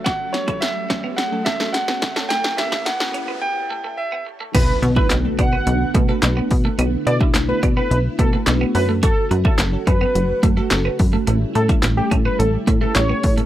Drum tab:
CC |----------------|----------------|x---------------|----------------|
HH |x-xxx-x-x-x-x-xx|x-xxx-x---------|x-x-x-x-x-x-x-o-|x-x-x-x-x-x-x-o-|
CP |----------------|----------------|----x-------x---|----x-------x---|
SD |o-o-o-o-o-oooooo|oooooo----------|----o-------o---|----o-------o---|
BD |o--o--o---o---o-|---o------------|o--o--o---o---o-|---o--o---o-----|

CC |----------------|----------------|
HH |x-x-x-x-x-x-x-o-|x-xxx-x-x-x-x-ox|
CP |----x-------x---|----x-------x---|
SD |----o-------o---|----o-------o---|
BD |o--o--o---o---o-|---o--o---o---o-|